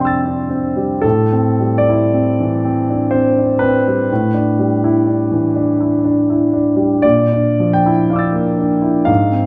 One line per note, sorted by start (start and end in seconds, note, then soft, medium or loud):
0.00 0.99 F2 soft
0.00 1.07 C3 soft
0.00 0.76 G3 soft
0.00 0.50 C4 soft
0.00 0.25 D4 soft
0.00 1.06 E4 soft
0.00 0.48 C5 medium
0.00 0.99 G5 soft
0.00 1.01 C6 soft
0.05 1.03 E6 soft
0.05 1.03 A6 soft
0.25 0.50 D4 soft
0.50 0.93 C4 soft
0.76 1.04 G3 soft
1.02 4.06 A2 soft
1.02 1.78 A4 medium
1.33 1.77 C4 soft
1.60 2.03 G3 soft
1.78 3.11 D5 medium
1.89 2.29 E4 soft
2.14 2.53 C4 soft
2.40 2.79 E3 soft
2.65 3.03 C4 soft
2.90 3.13 D4 soft
3.11 3.52 C4 soft
3.11 3.61 C5 soft
3.38 3.62 D4 soft
3.59 4.01 C4 soft
3.59 6.51 B4 medium
3.88 4.11 G3 soft
4.12 7.01 A2 soft
4.34 4.73 D4 soft
4.59 4.98 G3 soft
4.84 5.22 E4 soft
5.07 5.46 D4 soft
5.32 5.70 E3 soft
5.56 5.94 D4 soft
5.80 6.04 E4 soft
6.04 6.43 D4 soft
6.30 6.53 E4 soft
6.53 6.93 D4 soft
6.76 7.03 G3 soft
7.02 9.05 A#2 soft
7.02 7.76 D5 medium
7.32 7.75 D4 soft
7.60 8.02 F3 soft
7.73 9.07 G5 medium
7.86 8.26 E4 soft
8.10 8.50 D4 soft
8.10 9.04 F5 soft
8.10 9.06 D6 soft
8.16 9.07 E6 soft
8.16 9.09 A6 soft
8.33 8.73 A#3 soft
8.58 8.98 D4 soft
8.82 9.08 E4 soft
9.05 9.46 G#2 soft
9.05 9.46 F5 medium
9.32 9.46 C4 soft